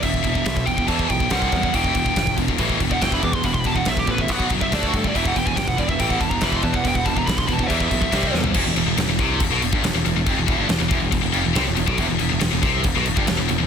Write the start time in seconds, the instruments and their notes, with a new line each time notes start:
0.03 picked electric bass E1, distorted electric guitar E2 B2, lead electric guitar E5, kick, crash
0.14 kick
0.24 picked electric bass E1, distorted electric guitar E2 B2, kick, crash
0.35 distorted electric guitar E2 B2, kick
0.45 picked electric bass B1, distorted electric guitar E2 B2, kick, snare, crash
0.57 kick
0.67 picked electric bass E1, distorted electric guitar E2 B2, lead electric guitar G5, kick, crash
0.78 distorted electric guitar E2 B2, kick
0.87 distorted electric guitar E2 B2 E3, picked electric bass E2, lead electric guitar A5, kick, crash
0.99 kick
1.09 picked electric bass B1, distorted electric guitar E2 B2, lead electric guitar G5, kick, crash
1.20 distorted electric guitar E2 B2, kick
1.30 picked electric bass C2, distorted electric guitar C3 G3 C4, lead electric guitar F#5, kick, snare, crash
1.42 kick
1.52 picked electric bass E2, distorted electric guitar C3 G3, kick, crash
1.63 distorted electric guitar C3 G3, kick
1.73 picked electric bass E1, distorted electric guitar E2 B2 E3, string section E3 G3 B3, lead electric guitar G5, kick, crash
1.84 kick
1.94 picked electric bass E1, distorted electric guitar E2 B2, kick, crash
2.05 distorted electric guitar E2 B2, kick
2.16 picked electric bass G1, distorted electric guitar E2 B2, kick, snare, crash
2.27 kick
2.37 picked electric bass E1, distorted electric guitar E2 B2, kick, crash
2.48 distorted electric guitar E2 B2, kick
2.58 picked electric bass A1, distorted electric guitar E2 B2 E3, kick, crash
2.70 kick
2.80 picked electric bass E1, distorted electric guitar E2 B2, kick, crash
2.91 distorted electric guitar E2 B2, lead electric guitar F#5, kick
3.01 picked electric bass E1, distorted electric guitar E2 B2 E3, lead electric guitar G5, kick, snare, crash
3.12 lead electric guitar B5, kick
3.23 distorted electric guitar E2 B2, picked electric bass E2, lead electric guitar D6, kick, crash
3.33 distorted electric guitar E2 B2, lead electric guitar C6, kick
3.43 picked electric bass E1, distorted electric guitar E2 B2, lead electric guitar B5, kick, crash
3.53 lead electric guitar C6, kick
3.61 lead electric guitar B5, crash
3.65 picked electric bass E1, distorted electric guitar E2 B2, lead electric guitar A5, kick
3.76 distorted electric guitar E2 B2, lead electric guitar F#5, kick
3.85 picked electric bass B1, distorted electric guitar E2 B2, lead electric guitar E5, kick, snare, crash
3.97 lead electric guitar G4, kick
4.07 picked electric bass A1, distorted electric guitar E2 B2, lead electric guitar B4, kick, crash
4.18 distorted electric guitar E2 B2, lead electric guitar E5, kick
4.28 picked electric bass B1, distorted electric guitar B2 F#3 B3, string section B2 F#3 F#4 B4, lead electric guitar F#5, kick, crash
4.40 kick
4.50 picked electric bass F#1, distorted electric guitar B2 F#3, kick, crash
4.61 distorted electric guitar B2 F#3, lead electric guitar E5, kick
4.72 picked electric bass D2, distorted electric guitar D3 A3 D4, string section D3 A3 A4 D5, lead electric guitar D5, kick, snare, crash
4.83 lead electric guitar F#4, kick
4.94 picked electric bass G2, distorted electric guitar D3 A3, lead electric guitar A4, kick, crash
5.04 distorted electric guitar D3 A3, lead electric guitar D5, kick
5.15 picked electric bass E1, distorted electric guitar E2 B2 E3, string section E3 B3 G4 B4, lead electric guitar E5, kick, crash
5.26 lead electric guitar F#5, kick
5.36 picked electric bass E1, distorted electric guitar E2 B2, lead electric guitar G5, kick, crash
5.47 distorted electric guitar E2 B2, lead electric guitar G#5, kick
5.57 picked electric bass G1, distorted electric guitar E2 B2, lead electric guitar G5, kick, snare, crash
5.68 lead electric guitar F#5, kick
5.78 picked electric bass E1, distorted electric guitar E2 B2, lead electric guitar D5, kick, crash
5.89 distorted electric guitar E2 B2, lead electric guitar E5, kick
6.00 picked electric bass A1, distorted electric guitar E2 B2 E3, lead electric guitar G5, kick, crash
6.10 lead electric guitar F#5, kick
6.20 picked electric bass E1, distorted electric guitar E2 B2, lead electric guitar A5, kick, crash
6.30 distorted electric guitar E2 B2, lead electric guitar A#5, kick
6.41 picked electric bass E1, distorted electric guitar E2 B2 E3, lead electric guitar B5, kick, snare, crash
6.52 lead electric guitar C6, kick
6.62 picked electric bass E2, distorted electric guitar E2 B2, lead electric guitar A5, kick, crash
6.74 distorted electric guitar E2 B2, lead electric guitar F#5, kick
6.85 picked electric bass E1, distorted electric guitar E2 B2, lead electric guitar G5, kick, crash
6.95 lead electric guitar F#5, kick
7.05 picked electric bass E1, distorted electric guitar E2 B2, lead electric guitar A5, kick, crash
7.17 distorted electric guitar E2 B2, lead electric guitar A#5, kick
7.27 picked electric bass B1, distorted electric guitar E2 B2, lead electric guitar B5, kick, snare, crash
7.38 lead electric guitar C6, kick
7.47 picked electric bass E1, distorted electric guitar E2 B2, lead electric guitar B5, kick, crash
7.54 lead electric guitar A5
7.59 distorted electric guitar E2 B2, kick
7.64 lead electric guitar F#5
7.68 picked electric bass E2, distorted electric guitar E2 B2 E3, lead electric guitar E5, kick, crash
7.80 kick
7.91 picked electric bass B1, distorted electric guitar E2 B2, kick, crash
8.02 distorted electric guitar E2 B2, kick
8.12 picked electric bass C2, string section C3 G3 G4 C5, distorted electric guitar C3 G3 C4, kick, snare, crash
8.23 kick
8.34 picked electric bass E2, distorted electric guitar C3 G3, snare
8.44 distorted electric guitar C3 G3, floor tom
8.54 picked electric bass E1, distorted electric guitar E2, kick, crash
8.66 picked electric bass E1, distorted electric guitar E2
8.75 picked electric bass E1, distorted electric guitar E2, crash
8.86 picked electric bass E1, distorted electric guitar E2
8.96 picked electric bass E1, distorted electric guitar E2, snare, crash
9.07 picked electric bass E1, distorted electric guitar E2
9.19 picked electric bass C2, distorted electric guitar C3, kick, crash
9.40 picked electric bass E1, distorted electric guitar E2, kick, crash
9.50 picked electric bass B1, distorted electric guitar B2
9.62 picked electric bass E1, distorted electric guitar E2, crash
9.73 picked electric bass G1, distorted electric guitar G2, kick
9.83 picked electric bass E1, distorted electric guitar E2, snare, crash
9.93 picked electric bass E1, distorted electric guitar E2
10.05 picked electric bass E1, distorted electric guitar E2, crash
10.15 picked electric bass E1, distorted electric guitar E2
10.27 picked electric bass F1, distorted electric guitar F2, kick, crash
10.37 picked electric bass E1, distorted electric guitar E2
10.48 picked electric bass E1, distorted electric guitar E2, kick, crash
10.58 picked electric bass G1, distorted electric guitar G2
10.69 picked electric bass E1, distorted electric guitar E2, snare, crash
10.80 picked electric bass E1, distorted electric guitar E2
10.91 picked electric bass E1, distorted electric guitar E2, kick, crash
11.02 picked electric bass E1, distorted electric guitar E2
11.12 picked electric bass E1, distorted electric guitar E2, kick, crash
11.23 picked electric bass E1, distorted electric guitar E2
11.33 picked electric bass F1, distorted electric guitar F2, crash
11.44 picked electric bass E1, distorted electric guitar E2
11.55 picked electric bass C2, distorted electric guitar C3, snare, crash
11.66 picked electric bass E1, distorted electric guitar E2
11.76 picked electric bass E1, distorted electric guitar E2, crash
11.87 picked electric bass B1, distorted electric guitar B2, kick
11.98 picked electric bass E1, distorted electric guitar E2, kick, crash
12.08 picked electric bass E1, distorted electric guitar E2
12.19 picked electric bass E1, distorted electric guitar E2, crash
12.31 picked electric bass E1, distorted electric guitar E2
12.41 picked electric bass E1, distorted electric guitar E2, snare, crash
12.53 picked electric bass E1, distorted electric guitar E2
12.63 picked electric bass C2, distorted electric guitar C3, kick, crash
12.84 picked electric bass E1, distorted electric guitar E2, kick, crash
12.96 picked electric bass B1, distorted electric guitar B2
13.06 picked electric bass E1, distorted electric guitar E2, crash
13.17 picked electric bass G1, distorted electric guitar G2, kick
13.27 picked electric bass E1, distorted electric guitar E2, snare, crash
13.38 picked electric bass E1, distorted electric guitar E2
13.49 picked electric bass E1, distorted electric guitar E2, crash
13.60 picked electric bass E1, distorted electric guitar E2